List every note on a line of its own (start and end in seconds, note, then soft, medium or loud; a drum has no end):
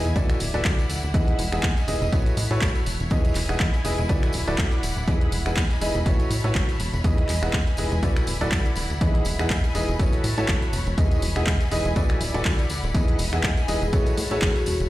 0.00 2.43 E4 medium
0.00 0.16 D#5 medium
0.00 0.56 G#5 medium
0.05 0.14 E1 loud
0.05 closed hi-hat soft
0.05 tambourine soft
0.16 0.36 D2 loud
0.16 0.37 E4 medium
0.16 0.37 F#4 medium
0.16 0.37 A4 medium
0.16 0.37 B4 medium
0.16 0.37 D5 medium
0.16 kick loud
0.16 closed hi-hat medium
0.16 tambourine medium
0.30 finger snap medium
0.30 closed hi-hat soft
0.30 tambourine soft
0.40 0.51 D1 medium
0.40 14.89 B5 medium
0.40 open hi-hat loud
0.40 tambourine medium
0.44 1.14 D5 medium
0.54 0.63 D1 medium
0.54 0.75 E4 medium
0.54 0.75 F#4 medium
0.54 0.75 A4 medium
0.54 0.75 B4 medium
0.54 0.75 D5 loud
0.54 closed hi-hat soft
0.54 tambourine soft
0.61 1.55 F#5 medium
0.65 0.85 D2 medium
0.65 kick loud
0.65 clap loud
0.65 closed hi-hat medium
0.65 tambourine medium
0.79 closed hi-hat soft
0.79 tambourine soft
0.90 1.01 D1 medium
0.90 open hi-hat medium
0.90 tambourine medium
1.03 1.12 D1 medium
1.03 closed hi-hat soft
1.03 tambourine soft
1.14 1.35 E2 loud
1.14 1.36 D#4 medium
1.14 1.36 E4 medium
1.14 1.36 G#4 medium
1.14 1.36 B4 medium
1.14 1.36 D#5 medium
1.14 kick loud
1.14 closed hi-hat medium
1.14 tambourine soft
1.28 closed hi-hat soft
1.39 1.50 E1 loud
1.39 2.43 D#5 medium
1.39 open hi-hat loud
1.39 tambourine medium
1.52 1.61 E1 medium
1.52 1.64 D#4 medium
1.52 1.64 E4 medium
1.52 1.64 G#4 medium
1.52 1.64 B4 medium
1.52 1.64 F#5 medium
1.52 finger snap medium
1.52 closed hi-hat soft
1.52 tambourine soft
1.57 2.12 G#5 medium
1.63 1.74 E2 medium
1.63 kick loud
1.63 clap loud
1.63 closed hi-hat medium
1.63 tambourine soft
1.77 closed hi-hat soft
1.77 tambourine soft
1.88 1.99 E1 medium
1.88 2.03 D#4 medium
1.88 2.03 E4 medium
1.88 2.03 G#4 medium
1.88 2.03 B4 medium
1.88 2.03 D#5 medium
1.88 open hi-hat medium
1.88 tambourine medium
2.02 2.10 E1 loud
2.02 closed hi-hat soft
2.02 tambourine soft
2.12 2.33 A1 loud
2.12 2.34 E4 medium
2.12 2.34 F#4 medium
2.12 3.35 F#4 medium
2.12 2.34 A4 medium
2.12 2.34 B4 medium
2.12 2.34 C#5 medium
2.12 kick loud
2.12 closed hi-hat medium
2.12 tambourine medium
2.26 closed hi-hat soft
2.26 tambourine soft
2.37 2.48 A2 medium
2.37 open hi-hat loud
2.37 tambourine loud
2.45 3.35 C#5 medium
2.45 2.86 A5 medium
2.51 2.60 A2 medium
2.51 2.72 E4 loud
2.51 2.72 F#4 medium
2.51 2.72 A4 medium
2.51 2.72 B4 medium
2.51 2.72 C#5 loud
2.51 closed hi-hat soft
2.51 tambourine soft
2.61 2.82 A1 medium
2.61 kick loud
2.61 clap loud
2.61 closed hi-hat medium
2.61 tambourine medium
2.75 closed hi-hat soft
2.75 tambourine soft
2.86 2.97 E1 medium
2.86 6.36 E4 medium
2.86 open hi-hat medium
2.86 tambourine medium
3.00 3.09 E1 medium
3.00 closed hi-hat soft
3.00 tambourine soft
3.10 3.31 E2 loud
3.10 3.33 D#4 medium
3.10 3.33 E4 medium
3.10 3.33 G#4 medium
3.10 3.33 B4 medium
3.10 3.33 D#5 medium
3.10 kick loud
3.10 closed hi-hat medium
3.10 tambourine soft
3.21 4.09 D#5 medium
3.21 closed hi-hat soft
3.21 tambourine soft
3.35 3.47 E1 loud
3.35 clap soft
3.35 open hi-hat loud
3.35 tambourine loud
3.42 4.50 G#5 medium
3.49 3.58 E1 loud
3.49 3.61 D#4 medium
3.49 3.61 E4 medium
3.49 3.61 G#4 medium
3.49 3.61 B4 medium
3.49 3.61 F#5 medium
3.49 finger snap medium
3.49 closed hi-hat soft
3.49 tambourine soft
3.60 3.71 E2 medium
3.60 kick loud
3.60 clap loud
3.60 closed hi-hat medium
3.60 tambourine medium
3.74 closed hi-hat soft
3.74 tambourine soft
3.85 3.96 E1 medium
3.85 3.99 D#4 medium
3.85 3.99 E4 medium
3.85 3.99 G#4 medium
3.85 3.99 B4 medium
3.85 3.99 D#5 medium
3.85 open hi-hat loud
3.85 tambourine medium
3.98 4.07 E1 loud
3.98 closed hi-hat soft
3.98 tambourine soft
4.09 4.30 D2 loud
4.09 4.31 E4 medium
4.09 4.31 F#4 medium
4.09 4.31 A4 medium
4.09 4.31 B4 medium
4.09 4.31 D5 medium
4.09 kick loud
4.09 closed hi-hat medium
4.09 tambourine medium
4.23 finger snap medium
4.23 closed hi-hat soft
4.23 tambourine soft
4.33 4.45 D1 medium
4.33 open hi-hat loud
4.33 tambourine loud
4.43 5.08 D5 medium
4.47 4.56 D1 medium
4.47 4.68 E4 medium
4.47 4.68 F#4 medium
4.47 4.68 A4 medium
4.47 4.68 B4 medium
4.47 4.68 D5 loud
4.47 closed hi-hat soft
4.47 tambourine soft
4.54 5.48 F#5 medium
4.58 4.69 D2 medium
4.58 kick loud
4.58 clap loud
4.58 closed hi-hat medium
4.58 tambourine medium
4.71 closed hi-hat soft
4.71 tambourine soft
4.83 4.94 D1 loud
4.83 open hi-hat loud
4.83 tambourine loud
4.97 5.06 D1 medium
4.97 closed hi-hat soft
4.97 tambourine soft
5.08 5.28 E2 loud
5.08 5.29 D#4 medium
5.08 5.29 E4 medium
5.08 5.29 G#4 medium
5.08 5.29 B4 medium
5.08 5.29 D#5 medium
5.08 kick loud
5.08 closed hi-hat medium
5.08 tambourine soft
5.21 closed hi-hat soft
5.32 5.43 E1 loud
5.32 open hi-hat loud
5.32 tambourine medium
5.45 5.55 E1 medium
5.45 5.58 D#4 medium
5.45 5.58 E4 medium
5.45 5.58 G#4 medium
5.45 5.58 B4 medium
5.45 6.36 D#5 medium
5.45 5.58 F#5 medium
5.45 finger snap medium
5.45 tambourine soft
5.49 6.06 G#5 medium
5.56 5.68 E2 medium
5.56 kick loud
5.56 clap loud
5.56 closed hi-hat medium
5.56 tambourine medium
5.70 closed hi-hat soft
5.70 tambourine soft
5.81 5.92 E1 medium
5.81 5.96 D#4 medium
5.81 5.96 E4 medium
5.81 5.96 G#4 medium
5.81 5.96 B4 medium
5.81 5.96 D#5 medium
5.81 open hi-hat medium
5.81 tambourine medium
5.95 6.04 E1 loud
5.95 closed hi-hat soft
5.95 tambourine soft
6.06 6.26 A1 loud
6.06 6.28 E4 medium
6.06 6.28 F#4 medium
6.06 7.29 F#4 medium
6.06 6.28 A4 medium
6.06 6.28 B4 medium
6.06 6.28 C#5 medium
6.06 kick loud
6.06 closed hi-hat medium
6.06 tambourine medium
6.11 7.29 C#5 medium
6.20 closed hi-hat soft
6.20 tambourine soft
6.30 6.42 A2 medium
6.30 open hi-hat loud
6.30 tambourine medium
6.40 6.80 A5 medium
6.44 6.53 A2 medium
6.44 6.65 E4 medium
6.44 6.65 F#4 medium
6.44 6.65 A4 medium
6.44 6.65 B4 medium
6.44 6.65 C#5 loud
6.44 closed hi-hat soft
6.44 tambourine soft
6.54 6.75 A1 medium
6.54 kick loud
6.54 clap loud
6.54 closed hi-hat medium
6.54 tambourine medium
6.69 closed hi-hat soft
6.69 tambourine soft
6.80 6.91 E1 medium
6.80 10.29 E4 medium
6.80 open hi-hat medium
6.80 tambourine medium
6.93 7.02 E1 medium
6.93 8.03 D#5 medium
6.93 closed hi-hat soft
6.93 tambourine soft
7.04 7.25 E2 loud
7.04 7.26 D#4 medium
7.04 7.26 E4 medium
7.04 7.26 G#4 medium
7.04 7.26 B4 medium
7.04 7.26 D#5 medium
7.04 kick loud
7.04 closed hi-hat medium
7.04 tambourine soft
7.18 8.43 G#5 medium
7.18 closed hi-hat soft
7.29 7.40 E1 loud
7.29 clap soft
7.29 open hi-hat loud
7.29 tambourine loud
7.43 7.51 E1 loud
7.43 7.55 D#4 medium
7.43 7.55 E4 medium
7.43 7.55 G#4 medium
7.43 7.55 B4 medium
7.43 7.55 F#5 medium
7.43 finger snap medium
7.43 closed hi-hat soft
7.43 tambourine soft
7.53 7.65 E2 medium
7.53 kick loud
7.53 clap loud
7.53 closed hi-hat medium
7.53 tambourine soft
7.67 closed hi-hat soft
7.67 tambourine soft
7.77 7.89 E1 medium
7.77 7.93 D#4 medium
7.77 7.93 E4 medium
7.77 7.93 G#4 medium
7.77 7.93 B4 medium
7.77 7.93 D#5 medium
7.77 open hi-hat medium
7.77 tambourine medium
7.92 8.01 E1 loud
7.92 closed hi-hat soft
7.92 tambourine soft
8.03 8.23 D2 loud
8.03 8.24 E4 medium
8.03 8.24 F#4 medium
8.03 8.24 A4 medium
8.03 8.24 B4 medium
8.03 8.24 D5 medium
8.03 kick loud
8.03 closed hi-hat medium
8.03 tambourine soft
8.16 finger snap medium
8.16 closed hi-hat soft
8.16 tambourine soft
8.27 8.38 D1 medium
8.27 open hi-hat loud
8.27 tambourine medium
8.41 8.50 D1 medium
8.41 8.62 E4 medium
8.41 8.62 F#4 medium
8.41 8.62 A4 medium
8.41 8.62 B4 medium
8.41 8.62 D5 loud
8.41 9.01 D5 medium
8.41 tambourine soft
8.48 9.42 F#5 medium
8.52 8.72 D2 medium
8.52 kick loud
8.52 clap loud
8.52 closed hi-hat medium
8.52 tambourine medium
8.65 closed hi-hat soft
8.65 tambourine soft
8.75 8.87 D1 medium
8.75 open hi-hat medium
8.75 tambourine medium
8.90 8.99 D1 medium
8.90 closed hi-hat soft
8.90 tambourine soft
9.01 9.21 E2 loud
9.01 9.23 D#4 medium
9.01 9.23 E4 medium
9.01 9.23 G#4 medium
9.01 9.23 B4 medium
9.01 9.23 D#5 medium
9.01 kick loud
9.01 closed hi-hat medium
9.01 tambourine soft
9.15 closed hi-hat soft
9.25 9.37 E1 loud
9.25 open hi-hat loud
9.25 tambourine medium
9.36 9.48 E1 medium
9.36 9.51 D#4 medium
9.36 9.51 E4 medium
9.36 9.51 G#4 medium
9.36 9.51 B4 medium
9.36 10.30 D#5 medium
9.36 9.51 F#5 medium
9.36 finger snap medium
9.36 closed hi-hat soft
9.36 tambourine soft
9.46 9.99 G#5 medium
9.50 9.61 E2 medium
9.50 kick loud
9.50 clap loud
9.50 closed hi-hat medium
9.50 tambourine soft
9.64 closed hi-hat soft
9.64 tambourine soft
9.75 9.86 E1 medium
9.75 9.89 D#4 medium
9.75 9.89 E4 medium
9.75 9.89 G#4 medium
9.75 9.89 B4 medium
9.75 9.89 D#5 medium
9.75 open hi-hat medium
9.75 tambourine medium
9.88 9.97 E1 loud
9.88 closed hi-hat soft
9.88 tambourine soft
9.99 10.20 A1 loud
9.99 10.21 E4 medium
9.99 10.21 F#4 medium
9.99 11.22 F#4 medium
9.99 10.21 A4 medium
9.99 10.21 B4 medium
9.99 10.21 C#5 medium
9.99 kick loud
9.99 closed hi-hat medium
9.99 tambourine soft
10.12 closed hi-hat soft
10.12 tambourine soft
10.18 10.73 A5 medium
10.24 10.35 A2 medium
10.24 11.22 C#5 medium
10.24 open hi-hat medium
10.24 tambourine medium
10.37 10.46 A2 medium
10.37 10.59 E4 medium
10.37 10.59 F#4 medium
10.37 10.59 A4 medium
10.37 10.59 B4 medium
10.37 10.59 C#5 loud
10.37 closed hi-hat soft
10.37 tambourine soft
10.48 10.69 A1 medium
10.48 kick loud
10.48 clap loud
10.48 closed hi-hat medium
10.48 tambourine medium
10.62 closed hi-hat soft
10.62 tambourine soft
10.73 10.84 E1 medium
10.73 14.23 E4 medium
10.73 open hi-hat medium
10.73 tambourine loud
10.87 10.96 E1 medium
10.87 closed hi-hat soft
10.87 tambourine soft
10.98 11.18 E2 loud
10.98 11.19 D#4 medium
10.98 11.19 E4 medium
10.98 11.19 G#4 medium
10.98 11.19 B4 medium
10.98 11.19 D#5 medium
10.98 11.96 D#5 medium
10.98 kick loud
10.98 closed hi-hat medium
10.98 tambourine soft
11.11 closed hi-hat soft
11.11 tambourine soft
11.22 11.33 E1 loud
11.22 open hi-hat loud
11.22 tambourine medium
11.29 12.37 G#5 medium
11.35 11.45 E1 medium
11.35 11.48 D#4 medium
11.35 11.48 E4 medium
11.35 11.48 G#4 medium
11.35 11.48 B4 medium
11.35 11.48 F#5 medium
11.35 finger snap medium
11.35 closed hi-hat soft
11.35 tambourine soft
11.47 11.58 E2 medium
11.47 kick loud
11.47 clap loud
11.47 closed hi-hat medium
11.47 tambourine medium
11.61 closed hi-hat soft
11.61 tambourine soft
11.71 11.83 E1 medium
11.71 11.86 D#4 medium
11.71 11.86 E4 medium
11.71 11.86 G#4 medium
11.71 11.86 B4 medium
11.71 11.86 D#5 medium
11.71 open hi-hat medium
11.71 tambourine medium
11.85 11.94 E1 loud
11.85 closed hi-hat soft
11.85 tambourine soft
11.96 12.16 D2 loud
11.96 12.18 E4 medium
11.96 12.18 F#4 medium
11.96 12.18 A4 medium
11.96 12.18 B4 medium
11.96 12.18 D5 medium
11.96 kick loud
11.96 closed hi-hat medium
11.96 tambourine medium
12.09 finger snap medium
12.09 closed hi-hat soft
12.09 tambourine soft
12.21 12.32 D1 medium
12.21 12.94 D5 medium
12.21 open hi-hat loud
12.21 tambourine medium
12.25 13.35 F#5 medium
12.34 12.43 D1 medium
12.34 12.55 E4 medium
12.34 12.55 F#4 medium
12.34 12.55 A4 medium
12.34 12.55 B4 medium
12.34 12.55 D5 loud
12.34 closed hi-hat soft
12.34 tambourine soft
12.45 12.66 D2 medium
12.45 kick loud
12.45 clap loud
12.45 closed hi-hat medium
12.45 tambourine medium
12.58 closed hi-hat soft
12.58 tambourine soft
12.70 12.81 D1 medium
12.70 open hi-hat medium
12.70 tambourine loud
12.83 12.92 D1 loud
12.83 closed hi-hat soft
12.83 tambourine soft
12.94 13.15 E2 loud
12.94 13.16 D#4 medium
12.94 13.16 E4 medium
12.94 13.16 G#4 medium
12.94 13.16 B4 medium
12.94 13.16 D#5 medium
12.94 kick loud
12.94 closed hi-hat medium
12.94 tambourine soft
13.00 14.23 D#5 medium
13.08 closed hi-hat soft
13.19 13.30 E1 loud
13.19 open hi-hat loud
13.19 tambourine medium
13.33 13.42 E1 medium
13.33 13.45 D#4 medium
13.33 13.45 E4 medium
13.33 13.45 G#4 medium
13.33 13.45 B4 medium
13.33 13.45 F#5 medium
13.33 finger snap medium
13.33 closed hi-hat soft
13.33 tambourine soft
13.39 13.93 G#5 medium
13.44 13.55 E2 medium
13.44 kick loud
13.44 clap loud
13.44 closed hi-hat medium
13.44 tambourine medium
13.57 closed hi-hat soft
13.57 tambourine soft
13.68 13.79 E1 medium
13.68 13.83 D#4 medium
13.68 13.83 E4 medium
13.68 13.83 G#4 medium
13.68 13.83 B4 medium
13.68 13.83 D#5 medium
13.68 open hi-hat medium
13.68 tambourine medium
13.82 13.91 E1 loud
13.82 13.94 G#4 medium
13.82 closed hi-hat soft
13.82 tambourine soft
13.93 14.13 A1 loud
13.93 14.15 E4 medium
13.93 14.15 F#4 medium
13.93 14.89 F#4 medium
13.93 14.15 A4 medium
13.93 14.15 B4 medium
13.93 14.15 C#5 medium
13.93 kick loud
13.93 closed hi-hat medium
13.93 tambourine medium
13.98 14.89 C#5 medium
14.06 closed hi-hat soft
14.06 tambourine soft
14.15 14.29 A2 loud
14.15 14.67 A5 medium
14.15 open hi-hat loud
14.15 tambourine medium
14.31 14.40 A2 medium
14.31 14.52 E4 medium
14.31 14.52 F#4 medium
14.31 14.43 G#4 medium
14.31 14.52 A4 medium
14.31 14.52 B4 medium
14.31 14.52 C#5 loud
14.31 tambourine soft
14.42 14.62 A1 medium
14.42 kick loud
14.42 clap loud
14.42 closed hi-hat medium
14.42 tambourine medium
14.56 14.63 F#4 medium
14.56 closed hi-hat soft
14.56 tambourine soft
14.66 14.78 E1 medium
14.66 14.89 E4 medium
14.66 14.75 F#4 medium
14.66 open hi-hat medium
14.66 tambourine medium
14.80 14.89 E1 medium
14.80 closed hi-hat soft
14.80 tambourine soft